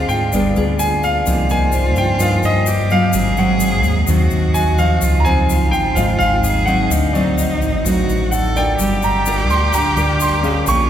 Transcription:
0.00 0.30 D3 medium
0.00 0.31 C4 soft
0.00 0.31 F4 medium
0.00 0.34 F4 medium
0.00 0.34 F4 soft
0.00 0.31 G#4 medium
0.00 0.35 C5 medium
0.09 0.31 G#2 medium
0.09 0.52 G5 medium
0.09 shaker soft
0.32 0.57 G1 medium
0.32 1.25 G3 soft
0.32 0.53 B3 soft
0.32 0.82 D4 medium
0.32 0.53 F4 soft
0.32 0.53 G#4 medium
0.32 1.46 D5 soft
0.32 shaker medium
0.50 1.60 F5 soft
0.56 1.22 D2 medium
0.56 1.23 B3 medium
0.56 1.23 F4 medium
0.56 1.23 G#4 medium
0.56 shaker soft
0.67 1.75 G5 soft
0.79 1.26 F4 medium
0.79 1.04 G#5 medium
0.79 shaker medium
1.03 1.52 F5 medium
1.03 shaker soft
1.26 1.97 C2 medium
1.26 2.18 C3 medium
1.26 1.46 F3 medium
1.26 1.46 A#3 soft
1.26 1.46 D#4 medium
1.26 2.69 F4 loud
1.26 shaker medium
1.49 2.17 F3 medium
1.49 2.17 A#3 medium
1.49 2.17 D#4 medium
1.49 1.99 G#5 medium
1.49 shaker soft
1.72 2.88 C5 medium
1.72 shaker medium
1.96 2.19 G2 medium
1.96 2.19 G5 medium
1.96 shaker soft
2.19 3.11 G2 medium
2.19 2.42 G2 medium
2.19 2.87 F3 medium
2.19 2.87 A#3 soft
2.19 2.87 D#4 medium
2.19 2.45 F5 medium
2.19 shaker medium
2.43 3.10 G2 medium
2.43 2.93 D#5 loud
2.43 shaker soft
2.66 3.15 G4 medium
2.66 shaker medium
2.90 3.34 F#3 medium
2.90 3.34 C4 medium
2.90 3.35 F4 medium
2.90 3.40 F5 loud
2.90 shaker soft
3.13 3.84 G#1 medium
3.13 4.06 G#2 medium
3.13 4.08 G#4 loud
3.13 shaker medium
3.37 4.05 F#3 medium
3.37 4.05 C4 medium
3.37 4.04 F#5 medium
3.37 shaker soft
3.60 shaker medium
3.83 4.06 D#2 medium
3.83 shaker soft
4.06 4.30 D#2 loud
4.06 5.00 D#3 medium
4.06 4.75 F#3 medium
4.06 4.75 C4 medium
4.06 5.05 F#4 loud
4.06 shaker medium
4.30 4.98 D#2 medium
4.30 shaker soft
4.54 5.22 D#5 soft
4.54 4.77 G#5 medium
4.54 shaker medium
4.78 5.22 F3 medium
4.78 5.22 C4 medium
4.78 5.22 D#4 medium
4.78 5.16 F5 medium
4.78 shaker soft
5.01 5.73 C#2 medium
5.01 5.94 C#3 medium
5.01 5.48 F4 loud
5.01 shaker medium
5.20 5.26 A#5 medium
5.25 5.93 F3 medium
5.25 5.93 C4 medium
5.25 5.93 D#4 medium
5.25 6.41 C5 soft
5.25 5.74 G#5 loud
5.25 shaker soft
5.49 6.45 F4 medium
5.49 shaker medium
5.71 5.95 G#1 medium
5.71 5.96 G5 medium
5.71 shaker soft
5.95 6.18 G#1 loud
5.95 6.88 G#2 medium
5.95 6.63 F3 medium
5.95 6.63 C4 medium
5.95 6.63 D#4 medium
5.95 6.17 F5 medium
5.95 shaker medium
6.19 6.86 G#1 medium
6.19 6.68 F5 loud
6.19 shaker soft
6.44 6.92 G#4 medium
6.44 shaker medium
6.66 7.10 F#3 medium
6.66 7.11 C4 medium
6.66 7.11 D#4 medium
6.66 7.15 F#5 medium
6.66 shaker soft
6.90 7.61 D2 medium
6.90 7.83 D3 medium
6.90 7.86 D#4 loud
6.90 shaker medium
7.13 7.81 F#3 medium
7.13 7.81 C4 medium
7.13 7.82 D#4 medium
7.13 7.80 D5 medium
7.13 shaker soft
7.38 shaker medium
7.61 7.83 A1 medium
7.61 shaker soft
7.85 8.06 A1 loud
7.85 8.77 A2 medium
7.85 8.32 F#3 medium
7.85 8.32 C4 medium
7.85 8.32 D#4 medium
7.85 8.34 F#4 loud
7.85 shaker medium
8.08 8.75 A1 medium
8.08 shaker soft
8.31 8.78 A4 medium
8.31 8.55 F#5 medium
8.31 shaker medium
8.56 8.99 D4 medium
8.56 8.99 F4 medium
8.56 8.99 A#4 medium
8.56 8.99 D5 medium
8.56 9.04 G5 medium
8.56 shaker soft
8.78 9.50 G1 medium
8.78 9.70 G3 medium
8.78 10.64 D4 medium
8.78 10.69 G4 loud
8.78 10.90 A#4 medium
8.78 10.64 F5 medium
8.78 10.64 G5 medium
8.78 shaker medium
9.02 9.51 A#5 medium
9.02 shaker soft
9.26 9.73 D4 soft
9.26 9.73 F4 medium
9.26 9.73 A#4 medium
9.26 shaker medium
9.50 9.71 D2 medium
9.50 9.74 C6 medium
9.50 shaker soft
9.73 9.95 D2 medium
9.73 10.65 D3 medium
9.73 10.87 G5 medium
9.73 10.22 A#5 medium
9.73 shaker medium
9.96 10.63 D2 medium
9.96 10.39 D4 medium
9.96 10.39 F4 medium
9.96 10.40 A#4 medium
9.96 shaker soft
10.20 10.69 C6 medium
10.20 shaker medium
10.43 10.90 C#4 medium
10.43 10.90 G#4 medium
10.43 10.87 F5 medium
10.43 shaker soft
10.66 10.90 A#1 medium
10.66 10.90 A#3 medium
10.66 10.90 C#4 medium
10.66 10.90 F4 loud
10.66 10.90 C#5 medium
10.66 10.90 G#5 medium
10.66 10.90 C#6 loud
10.66 shaker medium

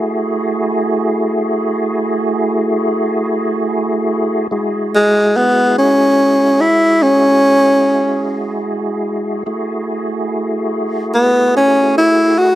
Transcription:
0.00 4.47 A3 medium
0.00 4.47 E4 medium
0.00 4.48 F#4 medium
0.00 4.47 G#4 medium
4.51 9.43 G#3 medium
4.51 9.43 E4 medium
4.51 9.44 F#4 medium
4.51 9.44 G#4 medium
4.95 5.38 G#3 medium
5.37 5.75 B3 medium
5.78 6.62 C#4 medium
6.61 7.04 E4 medium
7.03 8.62 C#4 loud
9.46 12.55 A3 medium
9.46 12.55 E4 medium
9.46 12.55 F#4 medium
9.46 12.55 G#4 medium
11.15 11.54 B3 medium
11.57 11.95 C#4 medium
11.98 12.40 E4 medium
12.38 12.55 F#4 medium

